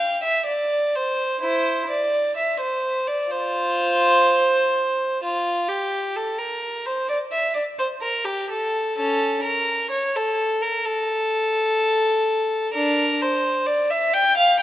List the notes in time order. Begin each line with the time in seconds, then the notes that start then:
Already playing: F5
0.23 E5
0.46 D5
0.95 C5
1.41 E4 C5
1.90 D5
2.37 E5
2.60 C5
3.07 D5
3.30 F4 C5
5.23 F4
5.69 G4
6.16 A4
6.38 A#4
6.86 C5
7.09 D5
7.32 E5
7.55 D5
7.79 C5
8.01 A#4
8.25 G4
8.51 A4
8.98 C#4 A4
9.43 A#4
9.91 C#5
10.16 A4
10.62 A#4
10.85 A4
12.74 D4 A#4
13.22 C5
13.66 D5
13.90 E5
14.14 G5
14.37 F5